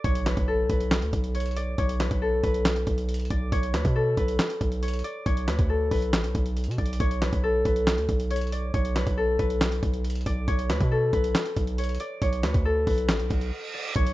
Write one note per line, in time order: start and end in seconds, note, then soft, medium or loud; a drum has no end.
0.00 0.47 A4 medium
0.00 0.26 B4 medium
0.00 0.10 D5 medium
0.04 0.36 B1 loud
0.04 1.34 C#5 loud
0.04 kick loud
0.04 closed hi-hat medium
0.04 impact medium
0.15 closed hi-hat medium
0.26 0.69 B4 medium
0.26 snare medium
0.26 clap medium
0.26 closed hi-hat medium
0.37 0.68 B1 loud
0.37 kick medium
0.37 closed hi-hat medium
0.48 2.21 A4 medium
0.69 1.04 B1 loud
0.69 2.00 B4 medium
0.69 kick loud
0.69 closed hi-hat medium
0.80 closed hi-hat medium
0.91 snare loud
0.91 clap medium
0.91 closed hi-hat medium
1.02 1.13 D2 loud
1.02 closed hi-hat medium
1.13 1.76 B1 loud
1.13 kick loud
1.13 closed hi-hat medium
1.24 closed hi-hat soft
1.35 1.62 C#5 medium
1.35 closed hi-hat medium
1.40 closed hi-hat medium
1.46 closed hi-hat medium
1.51 closed hi-hat soft
1.56 1.84 D5 medium
1.56 closed hi-hat medium
1.78 2.10 B1 loud
1.78 3.36 C#5 medium
1.78 kick loud
1.78 closed hi-hat medium
1.89 closed hi-hat medium
2.00 2.43 B4 medium
2.00 snare medium
2.00 clap medium
2.00 closed hi-hat medium
2.11 2.42 B1 loud
2.11 kick loud
2.11 closed hi-hat medium
2.22 3.95 A4 medium
2.43 2.85 B1 loud
2.43 3.73 B4 medium
2.43 kick loud
2.43 closed hi-hat medium
2.54 closed hi-hat medium
2.65 snare loud
2.65 clap medium
2.65 closed hi-hat medium
2.76 closed hi-hat medium
2.87 3.29 B1 loud
2.87 kick loud
2.87 closed hi-hat medium
2.98 closed hi-hat soft
3.09 closed hi-hat medium
3.14 closed hi-hat medium
3.20 closed hi-hat medium
3.25 closed hi-hat soft
3.30 3.51 B1 loud
3.30 3.58 D5 medium
3.30 kick loud
3.30 closed hi-hat medium
3.52 3.75 B1 loud
3.52 4.82 C#5 loud
3.52 kick loud
3.52 closed hi-hat medium
3.63 closed hi-hat medium
3.74 3.84 D2 medium
3.74 4.17 B4 medium
3.74 snare medium
3.74 clap medium
3.74 closed hi-hat medium
3.85 4.16 B2 loud
3.85 kick loud
3.85 closed hi-hat medium
3.96 5.69 A4 medium
4.17 4.38 B1 loud
4.17 5.47 B4 medium
4.17 kick loud
4.17 closed hi-hat medium
4.28 closed hi-hat medium
4.39 snare loud
4.39 clap medium
4.39 closed hi-hat medium
4.50 closed hi-hat medium
4.61 5.03 B1 loud
4.61 kick loud
4.61 closed hi-hat medium
4.72 closed hi-hat soft
4.83 5.10 C#5 medium
4.83 closed hi-hat medium
4.88 closed hi-hat medium
4.94 closed hi-hat medium
4.99 closed hi-hat soft
5.04 5.32 D5 medium
5.04 closed hi-hat medium
5.26 5.49 B1 loud
5.26 6.84 C#5 medium
5.26 kick loud
5.26 closed hi-hat medium
5.37 closed hi-hat medium
5.48 5.58 D2 loud
5.48 5.91 B4 medium
5.48 snare medium
5.48 clap medium
5.48 closed hi-hat medium
5.59 5.90 D2 loud
5.59 kick loud
5.59 closed hi-hat medium
5.69 7.43 A4 medium
5.91 6.14 B1 loud
5.91 7.21 B4 medium
5.91 kick loud
5.91 open hi-hat medium
6.02 closed hi-hat medium
6.13 6.25 A1 loud
6.13 snare loud
6.13 clap medium
6.13 closed hi-hat medium
6.24 6.34 B1 loud
6.24 closed hi-hat medium
6.35 6.69 B1 loud
6.35 kick loud
6.35 closed hi-hat medium
6.46 closed hi-hat medium
6.57 closed hi-hat medium
6.64 6.78 B2 medium
6.64 closed hi-hat medium
6.71 closed hi-hat medium
6.78 6.99 B1 loud
6.78 7.06 D5 medium
6.78 kick loud
6.78 closed hi-hat soft
6.86 closed hi-hat medium
6.93 closed hi-hat medium
7.00 7.31 B1 loud
7.00 8.30 C#5 loud
7.00 kick loud
7.00 closed hi-hat medium
7.11 closed hi-hat medium
7.22 7.65 B4 medium
7.22 snare loud
7.22 clap medium
7.22 closed hi-hat medium
7.33 7.64 B1 loud
7.33 kick loud
7.33 closed hi-hat medium
7.43 9.17 A4 medium
7.65 7.99 B1 loud
7.65 8.95 B4 medium
7.65 kick loud
7.65 closed hi-hat medium
7.76 closed hi-hat medium
7.87 snare loud
7.87 clap medium
7.87 closed hi-hat medium
7.98 8.08 D2 loud
7.98 closed hi-hat medium
8.09 8.71 B1 loud
8.09 kick loud
8.09 closed hi-hat medium
8.20 closed hi-hat soft
8.31 8.58 C#5 medium
8.31 closed hi-hat medium
8.36 closed hi-hat medium
8.41 closed hi-hat medium
8.47 closed hi-hat soft
8.52 8.80 D5 medium
8.52 closed hi-hat medium
8.74 9.05 B1 loud
8.74 10.32 C#5 medium
8.74 kick loud
8.74 closed hi-hat medium
8.85 closed hi-hat medium
8.96 9.39 B4 medium
8.96 snare medium
8.96 clap medium
8.96 closed hi-hat medium
9.07 9.38 B1 loud
9.07 kick loud
9.07 closed hi-hat medium
9.17 10.91 A4 medium
9.39 9.81 B1 loud
9.39 10.69 B4 medium
9.39 kick loud
9.39 closed hi-hat medium
9.50 closed hi-hat medium
9.61 snare loud
9.61 clap medium
9.61 closed hi-hat medium
9.72 closed hi-hat medium
9.83 10.24 B1 loud
9.83 kick loud
9.83 closed hi-hat medium
9.94 closed hi-hat soft
10.04 closed hi-hat medium
10.10 closed hi-hat medium
10.15 closed hi-hat medium
10.21 closed hi-hat soft
10.26 10.47 B1 loud
10.26 10.54 D5 medium
10.26 kick medium
10.26 closed hi-hat medium
10.48 10.71 B1 loud
10.48 11.78 C#5 loud
10.48 kick loud
10.48 closed hi-hat medium
10.59 closed hi-hat medium
10.70 10.80 D2 loud
10.70 11.13 B4 medium
10.70 snare loud
10.70 clap medium
10.70 closed hi-hat medium
10.80 11.12 B2 loud
10.80 kick loud
10.80 closed hi-hat medium
10.91 12.65 A4 medium
11.13 11.34 B1 loud
11.13 12.43 B4 medium
11.13 kick loud
11.13 closed hi-hat medium
11.24 closed hi-hat medium
11.35 snare loud
11.35 clap medium
11.35 closed hi-hat medium
11.46 closed hi-hat medium
11.56 11.98 B1 loud
11.56 kick loud
11.56 closed hi-hat medium
11.67 closed hi-hat soft
11.78 12.06 C#5 medium
11.78 closed hi-hat medium
11.84 closed hi-hat medium
11.89 closed hi-hat medium
11.95 closed hi-hat soft
12.00 12.28 D5 medium
12.00 closed hi-hat medium
12.22 12.45 B1 loud
12.22 13.80 C#5 medium
12.22 kick loud
12.22 closed hi-hat medium
12.33 closed hi-hat medium
12.43 12.54 D2 loud
12.43 12.87 B4 medium
12.43 snare loud
12.43 clap medium
12.43 closed hi-hat medium
12.54 12.86 D2 loud
12.54 kick loud
12.54 closed hi-hat medium
12.65 14.13 A4 medium
12.87 13.10 B1 loud
12.87 14.13 B4 medium
12.87 kick loud
12.87 open hi-hat medium
12.98 closed hi-hat medium
13.09 13.21 A1 loud
13.09 snare loud
13.09 clap medium
13.09 closed hi-hat medium
13.09 reverse cymbal medium
13.20 13.30 B1 loud
13.20 closed hi-hat medium
13.30 13.51 B1 loud
13.30 kick loud
13.30 closed hi-hat medium
13.41 closed hi-hat soft
13.74 14.02 D5 medium
13.96 14.13 B1 loud
13.96 14.13 C#5 loud
13.96 kick loud
13.96 closed hi-hat medium
13.96 impact medium
14.07 closed hi-hat medium